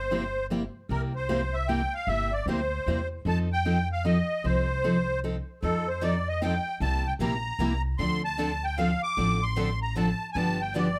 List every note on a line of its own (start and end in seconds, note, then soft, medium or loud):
0.00 0.66 G1 medium
0.00 0.46 C5 medium
0.11 0.22 C3 loud
0.11 0.22 G3 medium
0.11 0.23 A#3 loud
0.11 0.23 E4 loud
0.11 0.23 G4 loud
0.50 0.62 C3 medium
0.50 0.62 G3 medium
0.50 0.62 A#3 loud
0.50 0.62 E4 medium
0.50 0.62 G4 loud
0.89 1.84 C2 medium
0.89 1.12 C3 medium
0.89 1.12 G3 medium
0.89 1.12 A#3 medium
0.89 1.12 E4 medium
0.89 1.12 G4 medium
0.89 1.02 A#4 medium
1.16 1.56 C5 medium
1.29 1.40 C3 medium
1.29 1.40 G3 medium
1.29 1.41 A#3 loud
1.29 1.41 E4 loud
1.29 1.40 G4 loud
1.54 1.69 E5 medium
1.68 1.80 C3 medium
1.68 1.80 G3 medium
1.68 1.80 A#3 medium
1.68 1.80 E4 loud
1.68 1.80 G4 medium
1.68 1.94 G5 medium
1.94 2.09 F5 loud
2.07 2.39 G1 medium
2.07 2.30 C3 medium
2.07 2.30 G3 medium
2.07 2.30 A#3 medium
2.07 2.30 E4 medium
2.07 2.30 G4 medium
2.07 2.33 E5 loud
2.32 2.46 D5 medium
2.46 2.80 D2 medium
2.46 2.59 C3 medium
2.46 2.59 G3 medium
2.46 2.59 A#3 loud
2.46 2.59 E4 loud
2.46 2.60 G4 loud
2.46 3.08 C5 medium
2.86 3.20 E2 medium
2.86 2.99 C3 medium
2.86 2.99 G3 medium
2.86 2.99 A#3 medium
2.86 2.99 E4 medium
2.86 2.99 G4 medium
3.25 4.20 F2 medium
3.25 3.48 F3 medium
3.25 3.48 C4 medium
3.25 3.48 D#4 medium
3.25 3.48 A4 medium
3.25 3.39 A5 loud
3.53 3.89 G5 loud
3.65 3.77 F3 medium
3.65 3.77 C4 medium
3.65 3.77 D#4 medium
3.65 3.77 A4 loud
3.92 4.05 F5 medium
4.05 4.16 F3 medium
4.05 4.16 C4 medium
4.05 4.16 D#4 loud
4.05 4.17 A4 loud
4.05 4.46 D#5 medium
4.44 5.39 C2 medium
4.44 4.66 F3 medium
4.44 4.66 C4 medium
4.44 4.66 D#4 medium
4.44 4.66 A4 medium
4.44 5.20 C5 medium
4.84 4.95 F3 loud
4.84 4.95 C4 medium
4.84 4.96 D#4 loud
4.84 4.96 A4 medium
5.24 5.35 F3 medium
5.24 5.35 C4 medium
5.24 5.35 D#4 loud
5.24 5.35 A4 medium
5.63 6.57 F2 medium
5.63 5.85 F3 medium
5.63 5.85 C4 medium
5.63 5.85 D#4 medium
5.63 5.89 A4 medium
5.63 5.85 A4 medium
5.88 6.03 C5 medium
6.02 6.13 F3 loud
6.02 6.14 C4 loud
6.02 6.14 D#4 loud
6.02 6.14 A4 loud
6.02 6.28 D5 medium
6.28 6.41 D#5 medium
6.41 6.53 F3 medium
6.41 6.53 C4 medium
6.41 6.53 D#4 loud
6.41 6.53 A4 loud
6.41 6.79 G5 medium
6.80 7.12 C2 medium
6.80 7.03 C3 medium
6.80 7.03 G3 medium
6.80 7.03 A#3 medium
6.80 7.03 E4 medium
6.80 7.03 G4 medium
6.80 7.07 A5 loud
7.07 7.13 G5 medium
7.19 7.53 A#1 medium
7.19 7.32 C3 loud
7.19 7.32 G3 loud
7.19 7.32 A#3 loud
7.19 7.32 E4 medium
7.19 7.33 G4 medium
7.19 7.82 A#5 loud
7.59 7.93 C2 medium
7.59 7.71 C3 medium
7.59 7.72 G3 medium
7.59 7.72 A#3 loud
7.59 7.72 E4 loud
7.59 7.72 G4 medium
7.98 8.94 D2 medium
7.98 8.21 D3 medium
7.98 8.21 F3 medium
7.98 8.21 C4 medium
7.98 8.21 D4 medium
7.98 8.21 A4 medium
7.98 8.22 C6 loud
8.24 8.65 A5 loud
8.38 8.50 D3 medium
8.38 8.50 F3 medium
8.38 8.50 C4 loud
8.38 8.50 D4 loud
8.38 8.50 A4 loud
8.64 8.77 G5 medium
8.78 8.89 D3 medium
8.78 8.89 F3 medium
8.78 8.89 C4 loud
8.78 8.90 D4 medium
8.78 8.90 A4 medium
8.78 9.02 F5 loud
9.03 9.44 D6 loud
9.17 10.12 A1 medium
9.17 9.39 D3 medium
9.17 9.39 F3 medium
9.17 9.39 C4 medium
9.17 9.39 D4 medium
9.17 9.40 A4 medium
9.43 9.79 C6 loud
9.57 9.68 D3 medium
9.57 9.68 F3 medium
9.57 9.68 C4 loud
9.57 9.69 D4 loud
9.57 9.69 A4 loud
9.82 9.95 A#5 medium
9.96 10.08 D3 medium
9.96 10.08 F3 loud
9.96 10.08 C4 loud
9.96 10.08 D4 loud
9.96 10.08 A4 medium
9.96 10.30 A5 loud
10.33 10.99 G1 medium
10.33 10.57 D3 medium
10.33 10.58 F3 medium
10.33 10.58 B3 medium
10.33 10.58 G4 medium
10.33 10.36 G#5 medium
10.33 10.62 A5 loud
10.37 10.58 D4 medium
10.61 10.74 G5 medium
10.75 10.87 D3 loud
10.75 10.87 F3 loud
10.75 10.87 B3 loud
10.75 10.87 D4 loud
10.75 10.87 G4 loud
10.75 10.99 D5 medium